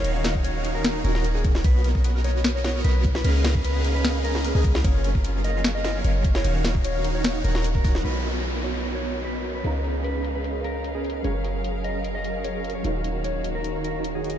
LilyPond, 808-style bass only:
\new Staff \with { instrumentName = "808-style bass" } { \clef bass \time 4/4 \key b \lydian \tempo 4 = 150 dis,,2~ dis,,8 dis,,4. | b,,2. b,,4 | cis,2.~ cis,16 cis,8. | fis,,2. fis,,4 |
dis,,2~ dis,,8 dis,,4. | b,,1 | cis,1 | fis,,1 |
dis,,1 | }